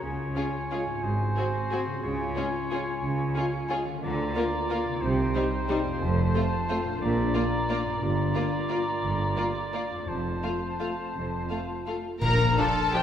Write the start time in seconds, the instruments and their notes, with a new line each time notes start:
Already playing: harp C#3 C#4 F4
0.00 double bass section C#2, cello section C#3, clarinet F4, harp G#4, oboe C#5, flute section G#5
0.36 french horn section G#3 F4, viola section C#4, violin section F4 G#4
0.71 french horn section G#3 F4, viola section C#4, violin section F4 G#4
0.85 harp G#2
0.90 harp C4
0.95 harp F#4
0.99 harp G#4
1.03 double bass section G#1, cello section G#2, clarinet F#4, oboe C5
1.36 viola section C4, french horn section C4 F#4, violin section F#4 G#4
1.70 viola section C4, french horn section C4 F#4, violin section F#4 G#4
1.85 harp C#3
1.90 harp C#4
1.95 harp F4
1.99 harp G#4, oboe C#5
2.03 double bass section C#2, cello section C#3, clarinet F4, flute section G#5
2.35 french horn section G#3 F4, viola section C#4, violin section F4 G#4
2.70 french horn section G#3 F4, viola section C#4, violin section F4 G#4
3.03 double bass section C#2, cello section C#3
3.35 french horn section G#3 F4, viola section C#4, violin section F4 G#4
3.69 french horn section G#3 F4, viola section C#4, violin section F4 G#4
3.85 harp D3
3.89 harp A#3
3.94 harp F4
3.99 clarinet F4, harp A#4
4.03 double bass section D2, cello section D3, oboe D5, flute section A#5
4.35 viola section A#3, french horn section A#3 F4, violin section F4 A#4
4.69 viola section A#3, french horn section A#3 F4, violin section F4 A#4
4.85 harp C3
4.89 harp C4
4.94 harp D#4
4.98 double bass section C2, harp G4, oboe C5, flute section G5
5.02 cello section C3, clarinet D#4
5.34 french horn section G3 D#4, viola section G3, violin section D#4 C5
5.69 viola section G3, french horn section G3 D#4, violin section D#4 C5
5.84 harp F2
5.88 harp C4
5.93 harp F4
5.97 harp A4, flute section A5
6.01 double bass section F1, timpani F2, cello section F2, clarinet F4
6.34 french horn section A3 C4, viola section A3, violin section F4 C5
6.69 viola section A3, french horn section A3 C4, violin section F4 C5
6.84 harp A#2
6.88 harp D4
6.93 harp F4
6.97 harp A#4
7.01 double bass section A#1, cello section A#2, oboe D5, flute section A#5
7.34 viola section A#3, french horn section A#3 D4, violin section F4 D5
7.69 viola section A#3, french horn section A#3 D4, violin section F4 D5
7.84 harp G2
7.88 harp D4
7.93 harp F4
7.97 harp A#4
8.01 double bass section G1, cello section G2, clarinet F4, oboe D5, flute section A#5
8.35 viola section A#3, french horn section A#3 F4, violin section F4 D5
8.69 viola section A#3, french horn section A#3 F4, violin section F4 D5
9.03 double bass section G1, cello section G2
9.36 viola section A#3, french horn section A#3 F4, violin section F4 D5
9.73 viola section A#3, french horn section A#3 F4, violin section F4 D5
9.90 harp F2 A3
9.99 harp F4
10.04 timpani F2, clarinet F4, harp C5, flute section A5
10.08 double bass section F1, cello section F2, oboe C5
10.43 viola section A3, french horn section A3 F4, violin section F4 F5
10.79 viola section A3, french horn section A3 F4, violin section F4 F5
11.15 double bass section F1, cello section F2
11.50 viola section A3, french horn section A3 F4, violin section F4 F5
11.86 viola section A3, french horn section A3 F4, violin section F4 F5
12.21 double bass section A#1, cello section A#2, harp A#2, timpani A#2, clarinet D4, violin section A#4 A#5, trumpet A#4, flute section F6, concert bass drum, crash
12.39 harp F3
12.57 viola section F3 D4, harp A#3, french horn section A#3 D4, oboe F4, trumpet A4, violin section A4 A5
12.76 harp F4
12.93 viola section F3 D4, harp A#3, french horn section A#3 D4, violin section G4 G5, trumpet G4